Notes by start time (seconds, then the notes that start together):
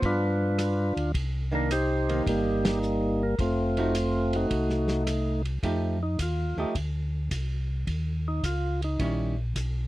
Already playing: F3 B3
0.02 G2 D4 F4 B4, kick, ride
0.59 cross-stick, hi-hat pedal, ride
0.96 D2, ride
1.14 C2, kick, ride
1.52 D#3 A#3 D4 A#4
1.71 D#4 G4 C5, hi-hat pedal, ride
2.09 D#3 A#3, ride
2.26 G1 G3 A#3 D#4, kick, ride
2.65 G3 A#3 D#4, snare, ride
2.83 hi-hat pedal
3.23 A#4
3.39 F1 A3 C4 F4, kick, ride
3.77 F3 A3 D#4 F#4, ride
3.95 hi-hat pedal, ride
4.33 A3 D#4 F#4, ride
4.50 C2, kick, ride
4.70 snare
4.88 snare
5.07 cross-stick, hi-hat pedal, ride
5.45 ride
5.63 F2 F3 A3 D#4 G4, kick, ride
6.03 D#4
6.19 D#2 F4, kick, hi-hat pedal, ride
6.57 D#2 F3 A3 D#4 G4
6.75 D2, kick, ride
7.31 C2, kick, hi-hat pedal, ride
7.87 D#2, kick, ride
8.28 D#4
8.43 C#2 F4, kick, hi-hat pedal, ride
8.82 D#4, ride
8.99 A#1 D#3 G3 C#4 E4, kick, ride
9.55 B1, kick, hi-hat pedal, ride